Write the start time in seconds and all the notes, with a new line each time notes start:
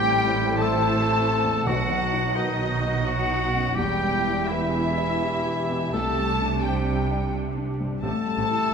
Already playing: A1 A2 G3 A3 E4 G4 C5 G5
0.03 C4
0.26 E4
0.50 A4
0.58 A3 A4 A5
0.73 C5
0.96 A4
1.20 C4
1.44 E2
1.66 B1 B2 F#3 D#4 F#4 F#5
1.91 F#3
2.13 D#4
2.36 D#3 D#4 B4 D#5
2.60 F#4
2.82 D#5
3.03 F#3 F#4 F#5
3.30 D#4
3.54 F#2
3.75 E1 E2 G3 E4 G4 G5
4.03 G3
4.26 E4
4.48 E3 E4 B4 E5
4.74 G4
4.98 E5
5.22 G4
5.45 E4
5.70 B2
5.93 C2 C3 A3 D4 A4 A5
6.18 G3
6.42 D4
6.64 G3 G4 C5 G5
6.88 G4
7.11 D5
7.34 G4
7.57 D4
7.80 G2
8.02 A1 A2 A3 C4 G4 A4 A5
8.26 G3
8.37 A1 A2 C4 G4
8.50 E4